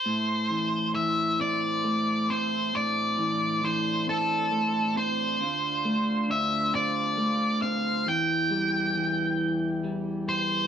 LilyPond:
<<
  \new Staff \with { instrumentName = "Lead electric guitar" } { \time 6/8 \key a \minor \tempo 4. = 45 c''4 e''8 d''4 c''8 | d''4 c''8 a'4 c''8~ | c''4 e''8 d''4 f''8 | g''2~ g''8 c''8 | }
  \new Staff \with { instrumentName = "Harmonium" } { \time 6/8 \key a \minor << { c''2.~ | c''2.~ | c''2. | r2. | } \\ { e'2. | d'2. | f'2. | g'2. | } >> }
  \new Staff \with { instrumentName = "Harmonium" } { \clef bass \time 6/8 \key a \minor <a, a>2.~ | <a, a>2. | <d, d>2. | <e, e>2. | }
  \new Staff \with { instrumentName = "Clean electric guitar" } { \clef bass \time 6/8 \key a \minor a,8 e8 e8 c'8 a8 c'8 | a,8 e8 e8 c'8 a8 c'8 | d8 a8 d8 c'8 a8 c'8 | e8 g8 e4 g4 | }
>>